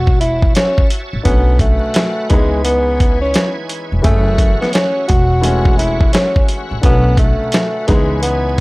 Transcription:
Already playing: upright bass E1, tenor saxophone F#4, tonewheel organ F#4 C#5 E5 A5
0.07 kick
0.20 tenor saxophone E4, closed hi-hat
0.42 kick
0.55 tenor saxophone C#4, snare, closed hi-hat
0.78 kick
0.90 closed hi-hat
1.13 upright bass A1
1.23 upright bass B1, upright piano D3 F#3 A3 C#4, tenor saxophone B3, tonewheel organ F#4 B4 F#5, kick, closed hi-hat
1.59 tenor saxophone A3, kick, closed hi-hat
1.94 snare, closed hi-hat
2.29 upright bass C#2, tonewheel organ E3 C#5 G#5, upright piano E3 G#3 B3 D#4, tenor saxophone G#3, kick, closed hi-hat
2.64 tenor saxophone B3, closed hi-hat
3.00 kick, closed hi-hat
3.21 tenor saxophone C#4
3.34 snare, closed hi-hat
3.69 closed hi-hat
3.92 upright bass E1
4.02 upright bass F#1, upright piano E3 A3 C#4 G#4, tenor saxophone A3, kick, closed hi-hat
4.06 tonewheel organ F#4 E5 F#5
4.38 kick, closed hi-hat
4.61 tenor saxophone B3, snare
4.73 tenor saxophone C#4, snare, closed hi-hat
5.08 upright bass E1, tenor saxophone F#4, kick, closed hi-hat
5.41 upright piano E3 G#3 A3 C#4, closed hi-hat
5.65 kick
5.78 tenor saxophone E4, closed hi-hat
6.01 kick
6.13 tenor saxophone C#4, snare, closed hi-hat
6.36 kick
6.48 closed hi-hat
6.71 upright bass A1
6.81 upright bass B1, upright piano D3 F#3 A3 C#4, tenor saxophone B3, tonewheel organ A4 B4, kick, closed hi-hat
7.17 tenor saxophone A3, kick, closed hi-hat
7.52 snare, closed hi-hat
7.87 upright bass C#2, tonewheel organ E3 C#5 G#5, upright piano E3 G#3 B3 D#4, tenor saxophone G#3, kick, snare, closed hi-hat
8.22 tenor saxophone B3, closed hi-hat

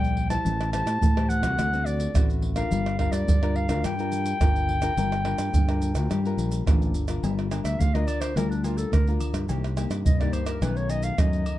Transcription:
Already playing: fingered electric bass A#1, nylon-string guitar G3 D#4 A#4 D5, clarinet G5
0.04 pandeiro, maracas
0.17 pandeiro
0.30 nylon-string guitar E4 G4 C5, clarinet A5, pandeiro, tamborim, maracas
0.45 fingered electric bass A1, nylon-string guitar A3, pandeiro, maracas, surdo
0.61 pandeiro, tamborim, maracas
0.73 nylon-string guitar E4 G4 C5, clarinet A5, pandeiro, tamborim, maracas
0.85 fingered electric bass A2, pandeiro, tamborim, maracas
1.01 fingered electric bass A2, nylon-string guitar E3, pandeiro, maracas, surdo
1.16 nylon-string guitar E4 G4 C5, pandeiro, tamborim, maracas
1.29 clarinet F#5, pandeiro, maracas
1.42 fingered electric bass C2, nylon-string guitar A3 C4 F#4, pandeiro, tamborim, maracas
1.58 fingered electric bass D2, nylon-string guitar D3, pandeiro, tamborim, maracas, surdo
1.73 nylon-string guitar A3 C4 F#4, pandeiro, maracas
1.86 clarinet D5, pandeiro, maracas
2.00 pandeiro, maracas
2.14 fingered electric bass A1, nylon-string guitar A2 A3 C4 F#4, pandeiro, tamborim, maracas, surdo
2.30 pandeiro, maracas
2.42 pandeiro
2.56 nylon-string guitar D4 F4 A#4, clarinet F5, pandeiro, tamborim, maracas
2.71 fingered electric bass G1, nylon-string guitar G3, pandeiro, maracas, surdo
2.86 pandeiro, tamborim, maracas
2.99 nylon-string guitar D4 F4 A#4, clarinet F5, pandeiro, tamborim, surdo
3.12 fingered electric bass G2, clarinet D5, pandeiro, tamborim, maracas
3.28 fingered electric bass G2, nylon-string guitar D3, pandeiro, maracas, surdo
3.42 nylon-string guitar D4 F4 A#4, pandeiro, tamborim, maracas
3.56 clarinet F5, pandeiro
3.69 fingered electric bass D2, nylon-string guitar D4 F4 A#4, pandeiro, tamborim, maracas
3.84 fingered electric bass G2, nylon-string guitar G3, clarinet G5, pandeiro, tamborim, maracas, surdo
3.99 nylon-string guitar D4 F4 A#4, pandeiro, maracas
4.12 pandeiro, maracas
4.26 pandeiro, maracas
4.40 fingered electric bass G1, nylon-string guitar D3 D4 F4 A#4, pandeiro, tamborim, maracas, surdo
4.56 pandeiro, maracas
4.69 pandeiro
4.82 nylon-string guitar D4 F4 A#4, pandeiro, tamborim, maracas
4.97 fingered electric bass G1, nylon-string guitar G3 D4 F4 A#4, pandeiro, maracas, surdo
5.12 pandeiro, tamborim, maracas
5.25 nylon-string guitar D4 F4 A#4, pandeiro, tamborim
5.38 fingered electric bass G2, pandeiro, tamborim, maracas
5.53 fingered electric bass G2, nylon-string guitar D3, pandeiro, maracas, surdo
5.68 nylon-string guitar D4 F4 A#4, pandeiro, tamborim, maracas
5.82 pandeiro, maracas
5.94 fingered electric bass D2, nylon-string guitar D4 F4 A#4, pandeiro, tamborim, maracas
6.10 fingered electric bass G2, nylon-string guitar G3, pandeiro, tamborim, maracas, surdo
6.25 nylon-string guitar D4 F4 A#4, pandeiro, maracas
6.37 fingered electric bass A#1, pandeiro, maracas
6.52 pandeiro, maracas
6.66 fingered electric bass A1, nylon-string guitar D3 D4 F4 A#4, pandeiro, tamborim, maracas, surdo
6.82 pandeiro, maracas
6.94 fingered electric bass G1, pandeiro, maracas
7.08 nylon-string guitar D4 F4 A#4, pandeiro, tamborim, maracas
7.23 fingered electric bass G1, nylon-string guitar G3, pandeiro, low agogo, maracas, surdo
7.39 pandeiro, tamborim, maracas
7.51 nylon-string guitar D4 F4 A#4, pandeiro, tamborim, low agogo, maracas
7.64 fingered electric bass D2, clarinet E5, pandeiro, tamborim, maracas
7.79 fingered electric bass D2, nylon-string guitar D3, clarinet F5, pandeiro, maracas, surdo
7.94 nylon-string guitar D4 F4 A#4, clarinet D#5, pandeiro, tamborim, maracas
8.07 clarinet D5, pandeiro, high agogo, maracas
8.21 clarinet C5, pandeiro, tamborim, high agogo, maracas
8.36 fingered electric bass D2, nylon-string guitar G3 D4 F4 A#4, clarinet A#4, pandeiro, tamborim, low agogo, maracas, surdo
8.50 clarinet D4, pandeiro, maracas
8.63 nylon-string guitar D4 F4 A#4, clarinet F4, pandeiro, low agogo, maracas
8.78 clarinet A4, pandeiro, maracas
8.92 fingered electric bass D2, nylon-string guitar D3, clarinet A#4, pandeiro, tamborim, maracas, surdo
9.07 nylon-string guitar D4 F4 A#4, pandeiro, maracas
9.21 pandeiro, high agogo, maracas
9.33 fingered electric bass G2, pandeiro, tamborim, maracas
9.49 fingered electric bass C2, nylon-string guitar C3 A#3 D#4 G4, pandeiro, low agogo, maracas, surdo
9.64 pandeiro, tamborim, maracas
9.77 nylon-string guitar A#3 D#4 G4, pandeiro, tamborim, low agogo, maracas
9.90 fingered electric bass G2, pandeiro, tamborim, maracas
10.05 fingered electric bass C2, nylon-string guitar G2, clarinet D#5, pandeiro, maracas, surdo
10.20 nylon-string guitar A#3 D#4 G4, clarinet D5, pandeiro, tamborim, maracas
10.33 clarinet C5, pandeiro, high agogo, maracas
10.46 clarinet A#4, pandeiro, tamborim, high agogo, maracas
10.62 fingered electric bass B1, nylon-string guitar B2 D#3 A3 C#4, clarinet B4, pandeiro, tamborim, low agogo, maracas, surdo
10.77 clarinet C#5, pandeiro, maracas
10.90 clarinet D#5, pandeiro, low agogo, maracas
11.03 clarinet F5, pandeiro, maracas
11.18 fingered electric bass F#2, nylon-string guitar F#2 D#3 A3 C#4, clarinet D#5, pandeiro, tamborim, maracas, surdo
11.33 pandeiro, maracas
11.46 pandeiro, high agogo, maracas

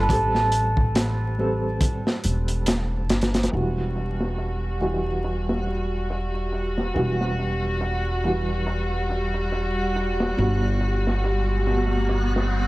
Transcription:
Already playing: hammered dulcimer A4
0.03 hammered dulcimer B4
0.09 upright bass A1, upright piano G3 C4 A4, hammered dulcimer A4, kick, closed hi-hat
0.35 snare
0.52 closed hi-hat
0.77 kick
0.95 snare, closed hi-hat
1.39 upright piano G3 C4 A4
1.81 kick, closed hi-hat
2.07 snare
2.24 upright bass E1, closed hi-hat
2.48 closed hi-hat
2.66 snare, closed hi-hat
3.10 upright bass G1, snare, closed hi-hat
3.22 snare, closed hi-hat
3.34 snare, closed hi-hat
3.43 snare, closed hi-hat
3.52 upright bass E1, upright piano E3 G3 F#4, string section G3 F#4, synth texture F#5, closed hi-hat
3.95 closed hi-hat
4.20 snare
4.38 closed hi-hat
4.81 upright piano E3 G3 F#4, open hi-hat
5.24 closed hi-hat
5.49 snare
5.67 closed hi-hat
6.10 closed hi-hat
6.34 closed hi-hat
6.52 closed hi-hat
6.78 snare
6.94 upright bass E1, upright piano E3 G3 F#4, closed hi-hat
7.21 snare
7.39 closed hi-hat
7.80 closed hi-hat
8.24 upright piano E3 G3 F#4, closed hi-hat
8.48 closed hi-hat
8.66 closed hi-hat
9.10 closed hi-hat
9.34 closed hi-hat
9.52 closed hi-hat
9.95 closed hi-hat
10.20 snare
10.37 upright bass G1, upright piano B2 G3 F#4, closed hi-hat, riser
10.81 closed hi-hat
11.07 snare
11.24 closed hi-hat
11.67 upright piano B2 G3 F#4, open hi-hat
12.09 closed hi-hat
12.36 snare
12.52 closed hi-hat

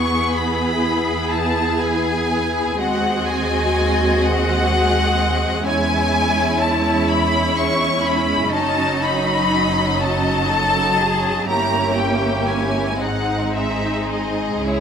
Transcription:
Already playing: double bass section E2, viola section B3 E4, cello section G#4, violin section G#4 B4 C#6
0.35 violin section B5
1.32 violin section A5
1.81 violin section G#5
2.78 double bass section D#2, viola section G#3 C4, cello section F#4, violin section D#5 F#5
3.29 violin section G#5
4.23 violin section F#5
5.65 double bass section E2, viola section C#4, violin section E4 C#5 G#5, cello section E4
6.61 violin section A5
7.09 violin section B5
7.58 violin section C#6
8.07 violin section B5
8.52 double bass section F#1, viola section F#3, violin section D#4 D#5 A5, cello section D#4
9.03 violin section B5
9.99 cello section C#4, violin section A5
10.49 cello section A4
10.99 cello section G#4
11.49 double bass section G1, viola section A#3 C#4, violin section E4 C#5 A#5, cello section G4
11.98 violin section G5
12.49 violin section G#5
13.00 double bass section G#1, viola section G#3 C4, cello section D#4, violin section D#4 G#4 F#5
13.56 violin section E5
14.11 violin section D#5
14.65 double bass section C#2, viola section C#4, cello section E4, violin section E4 C#5

